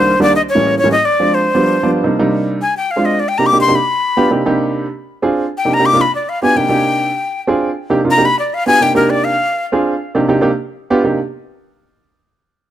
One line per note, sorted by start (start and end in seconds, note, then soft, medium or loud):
0.00 0.12 C2 medium
0.00 0.12 D#3 medium
0.00 0.12 G3 medium
0.00 0.12 A#3 medium
0.00 0.12 D4 medium
0.00 0.19 C5 loud
0.20 0.34 C2 medium
0.20 0.34 D#3 medium
0.20 0.34 G3 medium
0.20 0.35 A#3 medium
0.20 0.34 D4 medium
0.20 0.35 D5 loud
0.36 0.42 D#5 loud
0.49 0.75 C#5 medium
0.55 0.75 A2 medium
0.55 0.75 E3 medium
0.55 0.76 G3 medium
0.55 0.76 A#3 medium
0.55 0.76 C#4 medium
0.78 0.91 C#5 loud
0.84 0.91 A2 medium
0.84 0.91 E3 medium
0.84 0.91 G3 medium
0.84 0.91 A#3 medium
0.84 0.92 C#4 medium
0.92 1.07 D#5 loud
1.05 1.36 D5 loud
1.20 1.44 F3 medium
1.20 1.45 G#3 medium
1.20 1.45 C4 medium
1.20 1.45 D4 medium
1.34 1.91 C5 medium
1.55 1.75 F3 medium
1.55 1.75 G3 medium
1.55 1.75 B3 medium
1.55 1.75 D4 medium
1.83 2.04 F3 medium
1.83 2.03 G3 medium
1.83 2.04 B3 medium
1.83 2.03 D4 medium
2.04 2.14 C3 medium
2.04 2.14 G3 medium
2.04 2.14 A#3 medium
2.04 2.14 D4 medium
2.04 2.14 D#4 medium
2.19 2.58 C3 medium
2.19 2.59 G3 medium
2.19 2.58 A#3 medium
2.19 2.59 D4 medium
2.19 2.59 D#4 loud
2.62 2.75 G#5 medium
2.77 2.92 G5 medium
2.91 3.07 F5 medium
2.96 3.18 G#3 medium
2.96 3.18 C4 medium
2.96 3.18 D4 medium
2.96 3.18 F4 medium
3.05 3.21 D#5 medium
3.20 3.30 D5 medium
3.29 3.39 G5 medium
3.38 3.49 C3 medium
3.38 3.49 A#3 medium
3.38 3.49 D4 medium
3.38 3.49 D#4 medium
3.38 3.49 G4 medium
3.38 3.48 A#5 medium
3.46 3.60 D6 loud
3.53 3.63 C3 medium
3.53 3.63 A#3 medium
3.53 3.63 D4 medium
3.53 3.63 D#4 medium
3.53 3.63 G4 medium
3.61 3.77 C6 medium
3.67 3.74 C3 medium
3.67 3.75 A#3 medium
3.67 3.75 D4 medium
3.67 3.75 D#4 medium
3.67 3.75 G4 medium
3.75 4.31 B5 medium
4.17 4.27 B3 medium
4.17 4.27 D4 medium
4.17 4.27 F4 medium
4.17 4.27 G4 loud
4.30 4.41 C3 medium
4.30 4.40 A#3 medium
4.30 4.41 D4 medium
4.30 4.41 D#4 medium
4.30 4.41 G4 medium
4.46 4.85 C3 medium
4.46 4.85 A#3 medium
4.46 4.85 D4 medium
4.46 4.85 D#4 medium
4.46 4.85 G4 loud
5.22 5.44 C4 medium
5.22 5.44 D4 medium
5.22 5.44 F4 medium
5.22 5.44 G#4 medium
5.58 5.75 G5 medium
5.65 5.75 C3 medium
5.65 5.75 A#3 medium
5.65 5.75 D4 medium
5.65 5.75 D#4 medium
5.65 5.75 G4 medium
5.74 5.87 A#5 loud
5.79 5.89 C3 medium
5.79 5.89 A#3 medium
5.79 5.89 D4 medium
5.79 5.89 D#4 medium
5.79 5.89 G4 medium
5.86 6.03 D6 loud
5.93 6.00 C3 medium
5.93 6.00 A#3 medium
5.93 6.00 D4 medium
5.93 6.00 D#4 medium
5.93 6.00 F4 medium
6.01 6.15 B5 medium
6.15 6.31 D5 medium
6.29 6.42 F5 medium
6.42 6.52 B3 medium
6.42 6.52 D4 medium
6.42 6.52 F4 medium
6.42 6.52 G4 medium
6.42 6.58 G#5 loud
6.55 6.66 C3 medium
6.55 6.66 A#3 medium
6.55 6.66 D4 medium
6.55 6.66 D#4 medium
6.55 6.66 G4 medium
6.55 7.41 G5 medium
6.69 7.09 C3 medium
6.69 7.09 A#3 medium
6.69 7.09 D4 medium
6.69 7.09 D#4 medium
6.69 7.09 G4 medium
7.47 7.68 C4 medium
7.47 7.68 D4 medium
7.47 7.69 F4 medium
7.47 7.69 G#4 medium
7.90 8.00 C3 medium
7.90 8.00 A#3 medium
7.90 8.00 D4 medium
7.90 8.00 D#4 medium
7.90 8.00 G4 loud
8.04 8.14 C3 medium
8.04 8.14 A#3 medium
8.04 8.14 D4 medium
8.04 8.14 D#4 medium
8.04 8.14 F4 medium
8.11 8.27 A#5 loud
8.18 8.25 C3 medium
8.18 8.25 A#3 medium
8.18 8.25 D4 medium
8.18 8.25 D#4 medium
8.18 8.25 G4 medium
8.25 8.39 B5 loud
8.39 8.56 D5 soft
8.54 8.66 F5 medium
8.66 8.76 B3 medium
8.66 8.76 D4 medium
8.66 8.77 F4 medium
8.66 8.77 G4 medium
8.66 8.84 G#5 loud
8.81 8.90 C3 medium
8.81 8.90 A#3 medium
8.81 8.91 D4 medium
8.81 8.91 D#4 medium
8.81 8.91 G4 medium
8.81 8.96 G5 loud
8.94 9.34 C3 medium
8.94 9.34 A#3 medium
8.94 9.34 D4 medium
8.94 9.34 D#4 medium
8.94 9.34 G4 medium
8.94 9.12 A#4 medium
9.10 9.26 D5 medium
9.24 9.66 F5 medium
9.72 9.93 C4 medium
9.72 9.93 D4 medium
9.72 9.93 F4 medium
9.72 9.93 G#4 medium
10.15 10.24 C3 medium
10.15 10.24 A#3 medium
10.15 10.24 D4 medium
10.15 10.24 D#4 medium
10.15 10.24 G4 medium
10.28 10.38 C3 medium
10.28 10.38 A#3 medium
10.28 10.38 D4 medium
10.28 10.38 D#4 medium
10.28 10.38 G4 loud
10.41 10.49 C3 medium
10.41 10.49 A#3 medium
10.41 10.48 D4 medium
10.41 10.49 D#4 medium
10.41 10.49 G4 loud
10.90 11.00 B3 medium
10.90 11.00 D4 medium
10.90 11.00 F4 medium
10.90 11.00 G4 loud
11.04 11.17 C3 medium
11.04 11.17 A#3 medium
11.04 11.17 D4 medium
11.04 11.17 D#4 medium
11.04 11.17 G4 medium